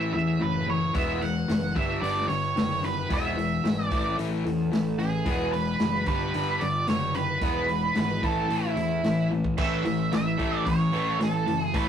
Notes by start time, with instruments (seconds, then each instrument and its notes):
Already playing: picked electric bass A1, distorted electric guitar A2 E3 A3, lead electric guitar E5
0.01 twelve-string acoustic guitar A3 C#4 E4
0.13 picked electric bass E2, distorted electric guitar A2 E3, lead electric guitar E5
0.27 twelve-string acoustic guitar A3 C#4 E4
0.40 picked electric bass F#1, distorted electric guitar A2 E3, twelve-string acoustic guitar A2 E3 A3 C#4 E4, lead electric guitar B4
0.67 distorted electric guitar A2 E3, twelve-string acoustic guitar E3 A3 C#4, lead electric guitar C#5
0.71 twelve-string acoustic guitar E4
0.93 picked electric bass E1, twelve-string acoustic guitar E2 B2 E3 G#3 B3 F#4, distorted electric guitar E3 G#3 B3, lead electric guitar E5, kick, open hi-hat
1.21 distorted electric guitar E3 G#3, twelve-string acoustic guitar E3 G#3 B3 F#4, lead electric guitar F#5, open hi-hat
1.36 twelve-string acoustic guitar E3 G#3 B3 F#4
1.48 picked electric bass F#1, twelve-string acoustic guitar E2 B2 E3 G#3 B3 F#4, distorted electric guitar E3 G#3, snare, open hi-hat
1.63 twelve-string acoustic guitar E3 G#3 B3 F#4
1.75 picked electric bass G1, distorted electric guitar G2 D3 G3, twelve-string acoustic guitar G3 B3 D4, lead electric guitar E5, kick, open hi-hat
1.79 twelve-string acoustic guitar G4
1.89 twelve-string acoustic guitar G3 B3 D4 G4
2.01 picked electric bass G1, distorted electric guitar G2 D3 G3, lead electric guitar D5, open hi-hat
2.17 twelve-string acoustic guitar G3 B3 D4 G4, snare
2.28 picked electric bass G1, distorted electric guitar G2 D3, lead electric guitar C#5, open hi-hat
2.43 twelve-string acoustic guitar G3 B3 D4 G4
2.56 picked electric bass F#1, distorted electric guitar G2 D3, twelve-string acoustic guitar G2 D3 G3 B3 D4 G4, snare, open hi-hat
2.83 distorted electric guitar G2 D3, twelve-string acoustic guitar G3 B3 D4 G4, lead electric guitar B4, open hi-hat
3.09 picked electric bass E1, twelve-string acoustic guitar E2 B2 F#3 G#3 B3 G#4, distorted electric guitar E3 G#3 B3, kick, open hi-hat
3.13 lead electric guitar E5
3.36 distorted electric guitar E3 G#3, twelve-string acoustic guitar F#3 G#3 B3 G#4, open hi-hat
3.51 twelve-string acoustic guitar F#3 G#3 B3 G#4
3.64 picked electric bass G#1, twelve-string acoustic guitar E2 B2 F#3 G#3 B3 G#4, distorted electric guitar E3 G#3, snare, open hi-hat
3.78 twelve-string acoustic guitar F#3 G#3 B3 G#4
3.84 lead electric guitar D5
3.91 picked electric bass A1, distorted electric guitar A2 E3 A3, twelve-string acoustic guitar E3 A3 C#4 A4, kick, open hi-hat
4.05 twelve-string acoustic guitar A3 C#4 A4
4.17 picked electric bass A1, distorted electric guitar A2 E3 A3, open hi-hat
4.31 twelve-string acoustic guitar A3 C#4 A4
4.45 picked electric bass E2, distorted electric guitar A2 E3, open hi-hat
4.58 twelve-string acoustic guitar A3 C#4 A4
4.72 picked electric bass A1, distorted electric guitar A2 E3, twelve-string acoustic guitar A2 E3 A3 C#4 A4, snare, open hi-hat
4.98 distorted electric guitar A2 E3, twelve-string acoustic guitar E3 A3 C#4 A4, lead electric guitar G#4, open hi-hat
5.25 picked electric bass E1, twelve-string acoustic guitar E2 B2 F#3 G#3 B3 G#4, distorted electric guitar E3 G#3 B3, kick, open hi-hat
5.53 distorted electric guitar E3 G#3, twelve-string acoustic guitar F#3 G#3, lead electric guitar B4, open hi-hat
5.66 twelve-string acoustic guitar F#3 G#3 B3 G#4
5.80 picked electric bass F#1, twelve-string acoustic guitar E2 B2 F#3 G#3 B3 G#4, distorted electric guitar E3 G#3, snare, open hi-hat
5.93 twelve-string acoustic guitar F#3 G#3 B3 G#4
6.06 picked electric bass G1, distorted electric guitar G2 D3 G3, twelve-string acoustic guitar G3 B3 D4, lead electric guitar B4, kick, open hi-hat
6.10 twelve-string acoustic guitar G4
6.21 twelve-string acoustic guitar G3 B3 D4 G4
6.34 picked electric bass G1, distorted electric guitar G2 D3 G3, open hi-hat
6.48 twelve-string acoustic guitar G3 B3 D4
6.60 picked electric bass G1, distorted electric guitar G2 D3, lead electric guitar D5, open hi-hat
6.75 twelve-string acoustic guitar G3 B3 D4 G4
6.88 picked electric bass F#1, distorted electric guitar G2 D3, twelve-string acoustic guitar G2 D3 G3 B3 D4 G4, lead electric guitar C#5, snare, open hi-hat
7.14 distorted electric guitar G2 D3, twelve-string acoustic guitar G3 B3 D4 G4, lead electric guitar B4, open hi-hat
7.41 picked electric bass E1, twelve-string acoustic guitar E2 B2 F#3 G#3 B3 E4, distorted electric guitar E3 G#3 B3, kick, open hi-hat
7.68 distorted electric guitar E3 G#3, twelve-string acoustic guitar F#3 G#3 B3, open hi-hat
7.83 twelve-string acoustic guitar F#3 G#3 B3 E4
7.95 picked electric bass G#1, twelve-string acoustic guitar E2 B2 F#3 G#3 B3 E4, distorted electric guitar E3 G#3, lead electric guitar B4, snare, open hi-hat
8.10 twelve-string acoustic guitar F#3 G#3 B3 E4
8.22 picked electric bass A1, distorted electric guitar A2 E3 A3, twelve-string acoustic guitar E3 A3 C#4 E4, lead electric guitar A4, kick, open hi-hat
8.36 twelve-string acoustic guitar A3 C#4 E4
8.49 picked electric bass A1, distorted electric guitar A2 E3 A3, lead electric guitar E4, open hi-hat
8.63 twelve-string acoustic guitar A3 C#4 E4
8.76 picked electric bass E2, distorted electric guitar A2 E3, open hi-hat
8.90 twelve-string acoustic guitar A3 C#4 E4
9.03 picked electric bass A1, distorted electric guitar A2 E3, twelve-string acoustic guitar A2 E3 A3 C#4 E4, snare, open hi-hat
9.30 distorted electric guitar A2 E3, twelve-string acoustic guitar E3 A3 C#4 E4, high tom
9.43 twelve-string acoustic guitar A3 C#4 E4, kick
9.57 picked electric bass A1, twelve-string acoustic guitar A2 E3 A3 C#4 E4, distorted electric guitar A2 E3 A3, lead electric guitar E5, kick, crash
9.85 picked electric bass A1, distorted electric guitar A2 E3, open hi-hat
10.11 picked electric bass A1, twelve-string acoustic guitar A2 E3 A3 C#4 E4, distorted electric guitar A2 E3, lead electric guitar E5, snare, open hi-hat
10.38 picked electric bass A1, distorted electric guitar A2 E3 A3, twelve-string acoustic guitar E3 A3 C#4 E4, kick, open hi-hat
10.57 lead electric guitar D5
10.65 picked electric bass A1, distorted electric guitar A2 E3, lead electric guitar C#5, kick, open hi-hat
10.79 twelve-string acoustic guitar A3 C#4 E4
10.93 picked electric bass A1, distorted electric guitar A2 E3 A3, twelve-string acoustic guitar E3 A3 C#4 E4, open hi-hat
11.20 picked electric bass A1, distorted electric guitar A2 E3, twelve-string acoustic guitar A2 E3 A3 C#4 E4, lead electric guitar A4, snare, open hi-hat
11.47 picked electric bass F#1, distorted electric guitar A2 E3, twelve-string acoustic guitar E3 A3 C#4 E4, open hi-hat
11.60 twelve-string acoustic guitar A3 C#4 E4, lead electric guitar G#4
11.74 picked electric bass A1, distorted electric guitar A2 E3 A3, twelve-string acoustic guitar A2 E3 A3 C#4 E4, lead electric guitar B4, kick, open hi-hat